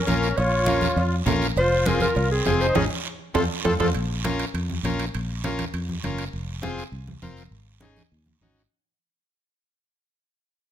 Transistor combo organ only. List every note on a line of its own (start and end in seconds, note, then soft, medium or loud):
0.07 0.28 C#4 medium
0.07 0.29 F4 medium
0.07 0.29 A#4 medium
0.67 0.88 C#4 medium
0.67 0.88 F4 medium
0.67 0.89 A#4 medium
1.26 1.47 C#4 medium
1.26 1.47 F4 medium
1.26 1.48 A#4 medium
1.87 2.07 C4 medium
1.87 2.08 F4 medium
1.87 2.08 G#4 medium
2.45 2.66 C4 medium
2.45 2.67 F4 medium
2.45 2.67 G#4 medium
2.75 2.85 C#4 loud
2.75 2.85 D#4 loud
2.75 2.85 G#4 loud
3.34 3.44 C4 medium
3.34 3.44 F4 medium
3.34 3.44 A4 medium
3.65 3.74 C4 medium
3.65 3.74 F4 medium
3.65 3.75 A4 medium
3.80 3.89 C4 medium
3.80 3.90 F4 medium
3.80 3.89 A4 medium
4.24 4.45 C#4 medium
4.24 4.45 F4 medium
4.24 4.45 A#4 medium
4.84 5.05 C#4 medium
4.84 5.05 F4 medium
4.84 5.06 A#4 medium
5.44 5.65 C#4 medium
5.44 5.65 F4 medium
5.44 5.65 A#4 medium
6.04 6.24 C#4 medium
6.04 6.25 F4 medium
6.04 6.25 A#4 medium
6.62 6.83 C4 medium
6.62 6.84 F4 medium
6.62 6.84 G#4 medium
7.22 7.43 C4 medium
7.22 7.43 F4 medium
7.22 7.43 A#4 medium
7.82 8.03 C#4 medium
7.82 8.03 D#4 medium
7.82 8.03 G#4 medium
8.42 8.63 C#4 medium
8.42 8.63 D#4 medium
8.42 8.63 F#4 medium